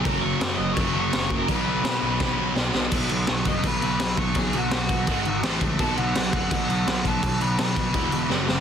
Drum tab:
CC |x-x-x-x-|x-x-----|xxxxxxxx|xxxxxxxx|
SD |--o---o-|--o-o-oo|--o---o-|--o---o-|
BD |o---o--o|o---o---|o--oo--o|o--oo--o|

CC |xxxxxxxx|xxxxxx--|
SD |--o---o-|--o---oo|
BD |o--oo--o|o--oo---|